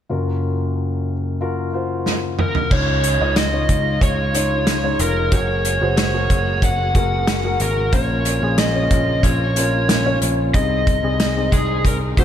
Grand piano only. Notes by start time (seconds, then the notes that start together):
0.09 F#1 F#2 F4 F#4 A#4
1.41 F4 F#4 A#4
1.73 F4 F#4 C5
2.71 C#3 D#4 F4 C#5
3.20 D#4 F4 D#5
3.52 D#4 F4 C#5
4.34 D#4 F4 C#5
4.83 D#4 F4 C#5
5.32 F#4 G#4 A#4
5.81 F#4 G#4 C5
6.13 F#4 G#4 A#4
6.95 F#4 G#4 A#4
7.44 F#4 G#4 A#4
7.93 A#2 C#4 F4 A#4
8.42 C#4 F4 G#4
8.75 C#4 F4 C#5
9.56 C#4 F4 A#4
10.05 C#4 F4 C#5
10.54 C3 C4 D#4 G#4
11.02 C4 D#4 G#4
11.36 C4 D#4 G#4
12.17 C4 D#4 F#4